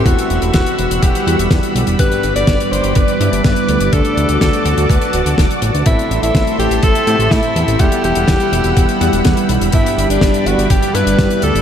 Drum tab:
HH |xxxxxxxxxxxxxxxx|xxxxxxxxxxxxxxxx|xxxxxxxxxxxxxxxx|xxxxxxxxxxxxxxxx|
SD |----o-------o---|----o-------o---|----o-------o---|----o-------o---|
BD |o---o---o---o---|o---o---o---o---|o---o---o---o---|o---o---o---o---|

HH |xxxxxxxxxxxxxxxx|xxxxxxxxxxxxxxxx|
SD |----o-------o---|----o-------o---|
BD |o---o---o---o---|o---o---o---o---|